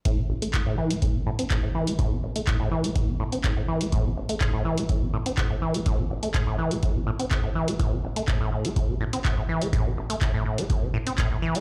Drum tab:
HH |x--xx--xx--xx--x|x--xx--xx--xx--x|x--xx--xx--xx--x|x--xx--xx--xx--x|
CP |----x-------x---|----x-------x---|----x-------x---|----x-------x---|
BD |o---o---o---o---|o---o---o---o---|o---o---o---o---|o---o---o---o---|

HH |x--xx--xx--xx--x|x--xx--xx--xx--x|
CP |----x-------x---|----x-------x---|
BD |o---o---o---o---|o---o---o---o---|